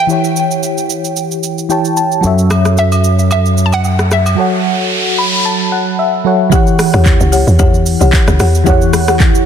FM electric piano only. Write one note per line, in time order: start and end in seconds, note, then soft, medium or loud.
0.07 1.66 E3 medium
0.07 1.66 E4 medium
0.07 1.67 G4 medium
0.11 1.68 C#5 medium
0.11 1.69 G5 medium
1.69 2.23 E3 medium
1.69 2.23 E4 medium
1.69 2.24 G4 medium
1.69 2.24 C#5 medium
1.69 1.95 G5 medium
1.69 1.96 A5 medium
1.97 2.22 A5 medium
2.21 4.33 F#3 medium
2.21 4.33 F#4 medium
2.21 4.34 A4 medium
2.25 4.35 C#5 medium
2.25 4.35 E5 medium
4.35 6.20 F#3 medium
4.35 6.21 F#4 medium
4.35 6.22 A4 medium
4.39 6.22 C#5 medium
4.39 5.71 F#5 medium
5.18 5.43 B5 medium
5.45 5.70 A5 medium
5.72 5.97 F#5 medium
5.99 6.49 E5 medium
6.24 6.52 F#3 medium
6.24 6.52 F#4 medium
6.24 6.52 A4 medium
6.24 6.53 C#5 medium
6.24 6.53 F#5 medium
6.50 8.61 E3 medium
6.50 8.62 E4 medium
6.50 8.63 G4 medium
6.54 8.63 C#5 medium
6.54 8.64 F#5 medium
8.64 9.46 E3 medium
8.64 9.46 E4 medium
8.64 9.46 G4 medium
8.68 9.46 C#5 medium
8.68 9.46 F#5 medium